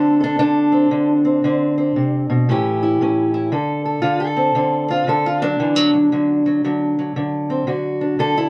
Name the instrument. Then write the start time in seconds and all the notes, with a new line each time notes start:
steel-string acoustic guitar
Already playing: D3 C4 D4 A4
0.20 D4 A4
0.39 D3 D4
0.72 C4
0.91 D3
1.25 C4
1.44 D3 C4
1.78 C4
1.96 C3
2.30 B2
2.49 A2 E3 C#4 E4 G4
2.83 E4
3.01 A2 C#4
3.34 E4
3.52 D3 A4
3.85 A4
4.02 D3 F4
4.20 A4
4.36 C4
4.55 D3 C4
4.88 C4 F4
5.07 D3 A4
5.26 F4
5.42 F#3 D4
5.60 D3 E3
5.76 F#3
5.94 F#3
6.12 D3 F#3
6.46 F#3
6.64 D3 F#3
6.99 F#3
7.16 D3
7.50 C4
7.67 D3 F#4
8.01 D4
8.19 D3 A4
8.38 E4